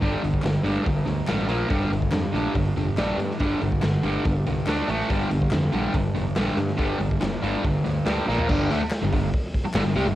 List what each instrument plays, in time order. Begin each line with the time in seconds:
0.01 picked electric bass G1, distorted electric guitar G2 D3 G3, kick, open hi-hat
0.23 picked electric bass G1, distorted electric guitar G2 D3, open hi-hat
0.34 kick
0.42 picked electric bass G1, distorted electric guitar G2 D3, snare, clap, open hi-hat
0.63 picked electric bass G1, distorted electric guitar G2 D3 G3, open hi-hat
0.84 picked electric bass G1, distorted electric guitar G2 D3, kick, open hi-hat
1.06 picked electric bass D2, distorted electric guitar G2 D3, open hi-hat
1.27 picked electric bass A1, distorted electric guitar G2 D3 G3, snare, clap, open hi-hat
1.48 picked electric bass A#1, distorted electric guitar A#2 F3 A#3, open hi-hat
1.68 picked electric bass G1, distorted electric guitar G2 D3 G3, kick, open hi-hat
1.91 picked electric bass G1, distorted electric guitar G2 D3, open hi-hat
2.02 kick
2.11 picked electric bass F2, distorted electric guitar G2 D3, snare, clap, open hi-hat
2.33 picked electric bass A#1, distorted electric guitar G2 D3 G3, open hi-hat
2.55 picked electric bass G1, distorted electric guitar G2 D3, kick, open hi-hat
2.76 picked electric bass F1, distorted electric guitar G2 D3, open hi-hat
2.97 picked electric bass A#1, distorted electric guitar G2 D3 G3, snare, clap, open hi-hat
3.17 picked electric bass G2, distorted electric guitar G2 D3, open hi-hat
3.31 snare
3.39 picked electric bass G1, distorted electric guitar G2 D3 G3, kick, open hi-hat
3.61 picked electric bass G1, distorted electric guitar G2 D3, open hi-hat
3.72 kick
3.81 picked electric bass G1, distorted electric guitar G2 D3, snare, clap, open hi-hat
4.03 picked electric bass G1, distorted electric guitar G2 D3 G3, open hi-hat
4.25 picked electric bass G1, distorted electric guitar G2 D3, kick, open hi-hat
4.46 picked electric bass C2, distorted electric guitar G2 D3, open hi-hat
4.66 picked electric bass D2, distorted electric guitar D3 A3 D4, snare, clap, open hi-hat
4.88 picked electric bass A1, distorted electric guitar A2 E3 A3, open hi-hat
5.00 snare
5.09 picked electric bass G1, distorted electric guitar G2 D3 G3, kick, open hi-hat
5.30 picked electric bass G1, distorted electric guitar G2 D3, open hi-hat
5.42 kick
5.51 picked electric bass F2, distorted electric guitar G2 D3, snare, clap, open hi-hat
5.72 picked electric bass A#1, distorted electric guitar G2 D3 G3, open hi-hat
5.94 picked electric bass G1, distorted electric guitar G2 D3, kick, open hi-hat
6.15 picked electric bass F1, distorted electric guitar G2 D3, open hi-hat
6.36 picked electric bass A#1, distorted electric guitar G2 D3 G3, snare, clap, open hi-hat
6.57 picked electric bass G2, distorted electric guitar G2 D3, snare, open hi-hat
6.68 snare
6.77 picked electric bass G1, distorted electric guitar G2 D3 G3, kick, open hi-hat
6.99 picked electric bass G1, distorted electric guitar G2 D3, open hi-hat
7.12 kick
7.20 picked electric bass G1, distorted electric guitar G2 D3, snare, clap, open hi-hat
7.41 picked electric bass G1, distorted electric guitar G2 D3 G3, open hi-hat
7.63 picked electric bass G1, distorted electric guitar G2 D3, kick, open hi-hat
7.84 picked electric bass D2, distorted electric guitar G2 D3, open hi-hat
8.06 picked electric bass D2, distorted electric guitar G2 D3 G3, snare, clap, open hi-hat
8.27 picked electric bass A#1, distorted electric guitar A#2 F3 A#3, snare
8.38 floor tom
8.49 picked electric bass G1, distorted electric guitar G2 D3 G3, kick, crash
8.70 picked electric bass D2, distorted electric guitar D3 A3, snare, open hi-hat
8.80 muted picked electric bass stroke, muted distorted electric guitar stroke
8.90 snare, clap, open hi-hat
9.02 picked electric bass G1, distorted electric guitar G2 D3
9.12 picked electric bass G1, distorted electric guitar G2 D3, kick, open hi-hat
9.33 kick, open hi-hat
9.54 kick, open hi-hat
9.65 muted distorted electric guitar stroke, muted picked electric bass stroke
9.74 picked electric bass G1, distorted electric guitar G2 D3, snare, clap, open hi-hat
9.85 picked electric bass G1, distorted electric guitar G2 D3
9.96 picked electric bass C2, distorted electric guitar C3 G3, open hi-hat
10.06 picked electric bass G1, distorted electric guitar G2 D3